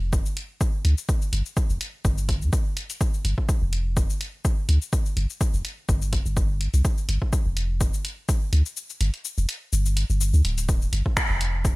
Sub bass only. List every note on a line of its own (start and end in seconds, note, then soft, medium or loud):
0.00 0.14 F1 loud
0.13 0.22 G1 medium
0.85 0.94 D2 medium
1.33 1.42 G1 loud
1.70 1.78 F1 loud
2.05 2.43 G1 loud
2.42 2.50 G2 medium
3.25 3.34 G1 loud
3.62 3.98 F1 medium
3.97 4.06 G1 medium
4.69 4.78 D2 medium
5.17 5.26 G1 loud
5.54 5.62 F1 loud
5.89 6.20 G1 loud
6.26 6.68 G1 medium
6.74 6.82 C2 medium
7.09 7.18 G1 loud
7.46 7.82 F1 loud
7.81 7.90 G1 medium
8.53 8.62 D2 medium
9.01 9.10 G1 loud
9.38 9.46 F1 loud
9.73 10.04 G1 loud
10.10 10.33 G1 medium
10.34 10.42 D2 medium
10.45 10.88 D1 medium
10.93 11.02 G1 loud
11.30 11.66 F1 loud
11.65 11.74 G1 medium